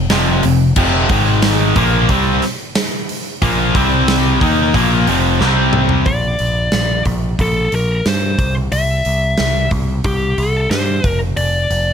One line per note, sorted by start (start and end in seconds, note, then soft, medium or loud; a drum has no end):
0.10 0.42 F1 medium
0.10 0.42 F2 medium
0.10 0.43 C3 loud
0.10 0.43 F3 loud
0.10 snare loud
0.10 open hi-hat medium
0.43 0.75 F1 medium
0.43 0.71 F2 medium
0.43 0.71 C3 medium
0.43 open hi-hat medium
0.76 1.08 F1 medium
0.76 1.09 F2 medium
0.76 1.09 C3 medium
0.76 1.09 F3 medium
0.76 kick loud
0.76 crash medium
1.09 1.72 G#1 loud
1.09 1.75 G#2 loud
1.09 1.76 D#3 loud
1.09 1.76 G#3 loud
1.09 kick loud
1.09 open hi-hat medium
1.42 snare loud
1.42 open hi-hat medium
1.76 2.07 A#1 loud
1.76 2.09 A#2 loud
1.76 2.09 F3 loud
1.76 2.09 A#3 loud
1.76 kick loud
1.76 open hi-hat medium
2.09 2.40 C2 loud
2.09 2.42 C3 loud
2.09 2.42 G3 loud
2.09 2.42 C4 loud
2.09 kick loud
2.09 open hi-hat medium
2.42 snare soft
2.42 open hi-hat medium
2.75 snare loud
2.75 open hi-hat medium
3.09 open hi-hat medium
3.42 3.73 A#1 medium
3.42 3.74 A#2 loud
3.42 3.74 F3 medium
3.42 3.74 A#3 loud
3.42 kick loud
3.42 open hi-hat medium
3.75 4.37 C2 medium
3.75 4.40 C3 medium
3.75 4.40 G3 loud
3.75 4.41 C4 loud
3.75 kick loud
3.75 open hi-hat medium
4.08 snare loud
4.08 open hi-hat medium
4.41 4.72 D#2 loud
4.41 4.73 D#3 loud
4.41 4.74 A#3 loud
4.41 4.74 D#4 loud
4.41 kick loud
4.41 open hi-hat medium
4.74 5.05 A#1 loud
4.74 5.07 A#2 loud
4.74 5.07 F3 loud
4.74 5.07 A#3 loud
4.74 kick medium
4.74 open hi-hat medium
5.07 5.39 F1 medium
5.07 5.40 F2 medium
5.07 5.40 C3 loud
5.07 5.40 F3 loud
5.07 open hi-hat medium
5.41 6.03 C2 medium
5.41 6.06 C3 loud
5.41 6.06 G3 medium
5.41 6.07 C4 loud
5.41 snare medium
5.73 mid tom loud
5.89 floor tom medium
6.06 6.35 A#1 medium
6.06 7.02 D5 loud
6.06 kick loud
6.06 open hi-hat medium
6.39 6.68 A#1 medium
6.39 open hi-hat soft
6.72 7.01 A#1 medium
6.72 snare loud
6.72 open hi-hat medium
7.05 7.34 A#1 medium
7.05 kick medium
7.05 open hi-hat soft
7.39 7.68 A#1 loud
7.39 7.75 A4 medium
7.39 kick medium
7.39 open hi-hat medium
7.72 8.01 A#1 medium
7.72 8.08 A#4 medium
7.72 open hi-hat soft
8.06 8.34 G2 medium
8.06 8.53 C5 medium
8.06 snare loud
8.06 open hi-hat medium
8.38 8.67 C2 medium
8.38 kick loud
8.38 open hi-hat medium
8.72 9.01 C2 medium
8.72 9.68 E5 loud
8.72 open hi-hat medium
9.05 9.34 C2 medium
9.05 open hi-hat medium
9.38 9.67 C2 medium
9.38 snare loud
9.38 open hi-hat medium
9.71 10.00 C2 medium
9.71 kick medium
9.71 open hi-hat soft
10.04 10.33 C2 loud
10.04 10.40 G4 medium
10.04 kick loud
10.04 open hi-hat medium
10.38 10.66 C2 medium
10.38 10.69 A4 medium
10.38 open hi-hat soft
10.71 10.99 G2 medium
10.71 11.17 C5 medium
10.71 snare loud
10.71 open hi-hat medium
11.04 11.33 F1 medium
11.04 kick loud
11.04 open hi-hat medium
11.37 11.65 F1 medium
11.37 11.93 D5 loud
11.37 open hi-hat medium
11.71 11.93 F1 medium
11.71 open hi-hat soft